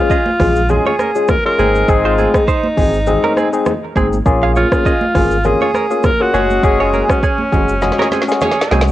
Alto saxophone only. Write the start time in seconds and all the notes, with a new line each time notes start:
Already playing: F4
0.71 G#4
0.87 G#4
1.30 A#4
1.46 A#4
1.89 G#4
2.06 F4
2.35 D#4
4.57 F4
5.46 G#4
5.63 G#4
6.06 A#4
6.22 F#4
6.65 G#4
6.81 G#4
7.11 C#4